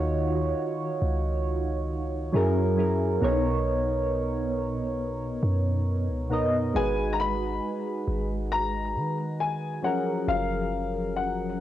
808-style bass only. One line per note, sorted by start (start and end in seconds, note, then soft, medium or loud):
0.00 0.54 D#2 loud
1.02 2.30 C#2 loud
2.34 3.19 F#2 loud
3.22 5.39 B1 loud
5.43 6.10 F#2 loud
6.09 6.44 C#2 medium
6.42 6.73 F#2 loud
6.75 7.60 G#1 loud
8.08 8.97 G#1 loud
8.96 9.80 D#3 loud
10.28 11.60 F#1 loud